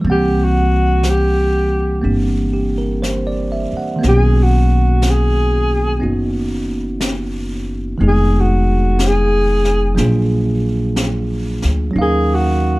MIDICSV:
0, 0, Header, 1, 6, 480
1, 0, Start_track
1, 0, Tempo, 995025
1, 21, Time_signature, 4, 2, 24, 8
1, 3861, Tempo, 986842
1, 6191, End_track
2, 0, Start_track
2, 0, Title_t, "Alto saxophone"
2, 0, Program_c, 0, 65
2, 56, Note_on_c, 0, 67, 74
2, 213, Note_on_c, 0, 66, 66
2, 221, Note_off_c, 0, 67, 0
2, 531, Note_on_c, 0, 67, 61
2, 538, Note_off_c, 0, 66, 0
2, 997, Note_off_c, 0, 67, 0
2, 1973, Note_on_c, 0, 68, 72
2, 2138, Note_on_c, 0, 66, 59
2, 2145, Note_off_c, 0, 68, 0
2, 2462, Note_on_c, 0, 68, 62
2, 2469, Note_off_c, 0, 66, 0
2, 2924, Note_off_c, 0, 68, 0
2, 3898, Note_on_c, 0, 68, 67
2, 4058, Note_on_c, 0, 66, 61
2, 4065, Note_off_c, 0, 68, 0
2, 4379, Note_on_c, 0, 68, 74
2, 4386, Note_off_c, 0, 66, 0
2, 4842, Note_off_c, 0, 68, 0
2, 5812, Note_on_c, 0, 68, 74
2, 5973, Note_on_c, 0, 66, 61
2, 5981, Note_off_c, 0, 68, 0
2, 6191, Note_off_c, 0, 66, 0
2, 6191, End_track
3, 0, Start_track
3, 0, Title_t, "Tine electric piano"
3, 0, Program_c, 1, 4
3, 0, Control_c, 1, 64, 127
3, 0, Note_on_c, 1, 52, 49
3, 7, Note_on_c, 1, 55, 44
3, 21, Note_on_c, 1, 58, 42
3, 27, Control_c, 1, 64, 0
3, 34, Note_on_c, 1, 60, 47
3, 47, Note_on_c, 1, 78, 51
3, 126, Control_c, 1, 64, 127
3, 967, Note_off_c, 1, 58, 0
3, 973, Note_off_c, 1, 60, 0
3, 973, Note_on_c, 1, 58, 43
3, 979, Note_on_c, 1, 60, 36
3, 985, Note_on_c, 1, 62, 36
3, 988, Note_on_c, 1, 67, 44
3, 1217, Note_off_c, 1, 67, 0
3, 1223, Note_on_c, 1, 67, 40
3, 1341, Note_on_c, 1, 70, 41
3, 1370, Note_off_c, 1, 67, 0
3, 1459, Note_on_c, 1, 72, 48
3, 1511, Note_off_c, 1, 70, 0
3, 1577, Note_on_c, 1, 74, 46
3, 1693, Note_off_c, 1, 72, 0
3, 1698, Note_on_c, 1, 76, 40
3, 1791, Note_off_c, 1, 74, 0
3, 1813, Note_off_c, 1, 78, 0
3, 1818, Note_on_c, 1, 78, 41
3, 1848, Note_off_c, 1, 76, 0
3, 1910, Note_on_c, 1, 51, 53
3, 1917, Note_off_c, 1, 58, 0
3, 1923, Note_on_c, 1, 58, 49
3, 1933, Note_off_c, 1, 52, 0
3, 1935, Note_on_c, 1, 59, 48
3, 1939, Note_off_c, 1, 55, 0
3, 1945, Note_off_c, 1, 60, 0
3, 1948, Note_off_c, 1, 62, 0
3, 1950, Note_on_c, 1, 61, 50
3, 1952, Control_c, 1, 64, 0
3, 1963, Note_on_c, 1, 66, 58
3, 1990, Note_off_c, 1, 78, 0
3, 2029, Control_c, 1, 64, 127
3, 2889, Note_off_c, 1, 59, 0
3, 2894, Note_off_c, 1, 61, 0
3, 2895, Note_on_c, 1, 59, 44
3, 2900, Note_on_c, 1, 61, 37
3, 2903, Note_on_c, 1, 63, 37
3, 2905, Note_off_c, 1, 66, 0
3, 2911, Note_on_c, 1, 66, 46
3, 3842, Note_off_c, 1, 51, 0
3, 3848, Note_on_c, 1, 51, 51
3, 3852, Note_off_c, 1, 58, 0
3, 3854, Note_off_c, 1, 59, 0
3, 3855, Note_on_c, 1, 56, 42
3, 3860, Note_off_c, 1, 63, 0
3, 3860, Note_on_c, 1, 59, 44
3, 3861, Note_off_c, 1, 61, 0
3, 3866, Note_on_c, 1, 63, 45
3, 3867, Note_off_c, 1, 66, 0
3, 3869, Control_c, 1, 64, 0
3, 3874, Note_on_c, 1, 68, 49
3, 3955, Control_c, 1, 64, 127
3, 4807, Note_on_c, 1, 54, 57
3, 4813, Note_on_c, 1, 58, 52
3, 4817, Note_off_c, 1, 51, 0
3, 4819, Note_on_c, 1, 62, 48
3, 4820, Note_off_c, 1, 56, 0
3, 4823, Note_off_c, 1, 59, 0
3, 4826, Note_off_c, 1, 63, 0
3, 4826, Note_on_c, 1, 65, 54
3, 4827, Note_off_c, 1, 68, 0
3, 4831, Control_c, 1, 64, 0
3, 4833, Note_on_c, 1, 68, 58
3, 4916, Control_c, 1, 64, 127
3, 5753, Note_off_c, 1, 54, 0
3, 5759, Note_on_c, 1, 54, 58
3, 5773, Note_on_c, 1, 61, 48
3, 5777, Note_off_c, 1, 58, 0
3, 5780, Note_off_c, 1, 62, 0
3, 5783, Note_off_c, 1, 65, 0
3, 5785, Note_on_c, 1, 63, 49
3, 5787, Note_off_c, 1, 68, 0
3, 5789, Control_c, 1, 64, 0
3, 5798, Note_on_c, 1, 77, 52
3, 5813, Note_on_c, 1, 70, 63
3, 5863, Control_c, 1, 64, 127
3, 6191, Note_off_c, 1, 54, 0
3, 6191, Note_off_c, 1, 61, 0
3, 6191, Note_off_c, 1, 63, 0
3, 6191, Note_off_c, 1, 70, 0
3, 6191, Note_off_c, 1, 77, 0
3, 6191, End_track
4, 0, Start_track
4, 0, Title_t, "Upright bass"
4, 0, Program_c, 2, 32
4, 22, Note_on_c, 2, 36, 81
4, 963, Note_off_c, 2, 36, 0
4, 983, Note_on_c, 2, 31, 65
4, 1778, Note_off_c, 2, 31, 0
4, 1950, Note_on_c, 2, 35, 75
4, 2889, Note_off_c, 2, 35, 0
4, 2908, Note_on_c, 2, 30, 64
4, 3845, Note_off_c, 2, 30, 0
4, 3862, Note_on_c, 2, 29, 74
4, 4804, Note_off_c, 2, 29, 0
4, 4821, Note_on_c, 2, 34, 73
4, 5611, Note_off_c, 2, 34, 0
4, 5631, Note_on_c, 2, 38, 55
4, 5771, Note_off_c, 2, 38, 0
4, 5783, Note_on_c, 2, 39, 76
4, 6191, Note_off_c, 2, 39, 0
4, 6191, End_track
5, 0, Start_track
5, 0, Title_t, "Muted upright bass strokes"
5, 1796, Note_on_c, 9, 29, 28
5, 1845, Note_off_c, 9, 29, 0
5, 6191, End_track
6, 0, Start_track
6, 0, Title_t, "Drums"
6, 19, Note_on_c, 9, 25, 36
6, 498, Note_off_c, 9, 25, 0
6, 498, Note_on_c, 9, 25, 26
6, 498, Note_on_c, 9, 38, 37
6, 498, Note_on_c, 9, 44, 46
6, 546, Note_off_c, 9, 38, 0
6, 546, Note_off_c, 9, 44, 0
6, 981, Note_off_c, 9, 25, 0
6, 981, Note_on_c, 9, 25, 41
6, 1463, Note_off_c, 9, 25, 0
6, 1463, Note_on_c, 9, 25, 35
6, 1463, Note_on_c, 9, 38, 40
6, 1463, Note_on_c, 9, 44, 45
6, 1511, Note_off_c, 9, 38, 0
6, 1511, Note_off_c, 9, 44, 0
6, 1944, Note_off_c, 9, 25, 0
6, 1944, Note_on_c, 9, 25, 35
6, 1944, Note_on_c, 9, 38, 24
6, 1992, Note_off_c, 9, 38, 0
6, 2422, Note_off_c, 9, 25, 0
6, 2422, Note_on_c, 9, 25, 29
6, 2422, Note_on_c, 9, 38, 38
6, 2422, Note_on_c, 9, 44, 48
6, 2470, Note_off_c, 9, 38, 0
6, 2470, Note_off_c, 9, 44, 0
6, 2901, Note_off_c, 9, 25, 0
6, 2901, Note_on_c, 9, 25, 35
6, 3380, Note_off_c, 9, 25, 0
6, 3380, Note_on_c, 9, 25, 35
6, 3380, Note_on_c, 9, 38, 47
6, 3380, Note_on_c, 9, 44, 51
6, 3428, Note_off_c, 9, 38, 0
6, 3428, Note_off_c, 9, 44, 0
6, 3859, Note_off_c, 9, 25, 0
6, 3859, Note_on_c, 9, 25, 29
6, 4341, Note_off_c, 9, 25, 0
6, 4341, Note_on_c, 9, 25, 32
6, 4341, Note_on_c, 9, 38, 41
6, 4341, Note_on_c, 9, 44, 51
6, 4390, Note_off_c, 9, 38, 0
6, 4390, Note_off_c, 9, 44, 0
6, 4660, Note_on_c, 9, 38, 25
6, 4709, Note_off_c, 9, 38, 0
6, 4819, Note_off_c, 9, 25, 0
6, 4819, Note_on_c, 9, 25, 35
6, 4819, Note_on_c, 9, 38, 29
6, 4868, Note_off_c, 9, 38, 0
6, 5300, Note_off_c, 9, 25, 0
6, 5300, Note_on_c, 9, 25, 30
6, 5300, Note_on_c, 9, 38, 42
6, 5300, Note_on_c, 9, 44, 47
6, 5349, Note_off_c, 9, 38, 0
6, 5349, Note_off_c, 9, 44, 0
6, 5621, Note_on_c, 9, 38, 27
6, 5669, Note_off_c, 9, 38, 0
6, 5779, Note_off_c, 9, 25, 0
6, 5779, Note_on_c, 9, 25, 33
6, 6191, Note_off_c, 9, 25, 0
6, 6191, End_track
0, 0, End_of_file